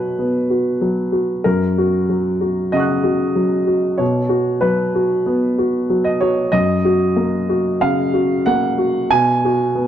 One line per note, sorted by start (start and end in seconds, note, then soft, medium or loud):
0.00 0.13 B2 medium
0.00 0.81 F#3 soft
0.00 0.50 F#4 soft
0.00 1.14 B4 medium
0.00 1.47 C#5 medium
0.19 0.69 B3 soft
0.50 1.01 F#4 soft
0.81 1.32 F#3 soft
1.12 1.45 F#4 soft
1.44 2.71 F#2 soft
1.44 2.75 A#4 medium
1.78 2.29 F#4 soft
2.09 2.62 F#3 soft
2.41 2.94 F#4 soft
2.72 3.25 C#3 soft
2.72 3.99 D#5 medium
2.72 3.96 F#5 soft
2.77 3.97 C#6 soft
2.77 3.99 F#6 soft
3.04 3.55 F#4 soft
3.36 3.87 F#3 soft
3.67 3.99 F#4 soft
3.98 5.22 B2 medium
3.98 4.62 C#5 medium
4.29 4.81 F#4 soft
4.61 5.14 F#3 soft
4.61 6.04 B4 medium
4.95 5.46 F#4 soft
5.26 5.77 B3 soft
5.59 6.08 F#4 soft
5.90 6.40 F#3 soft
6.04 6.20 D#5 medium
6.21 6.53 F#4 soft
6.21 6.52 C#5 medium
6.52 7.78 F#2 medium
6.52 7.82 D#5 medium
6.85 7.37 F#4 soft
7.16 7.69 A#3 soft
7.49 8.02 F#4 soft
7.81 8.34 C#3 soft
7.81 8.46 F5 medium
8.14 8.65 F#4 soft
8.46 8.98 A#3 soft
8.46 9.10 F#5 medium
8.78 9.10 F#4 soft
9.10 9.87 B2 medium
9.10 9.87 G#5 loud
9.45 9.87 F#4 medium
9.75 9.87 B3 soft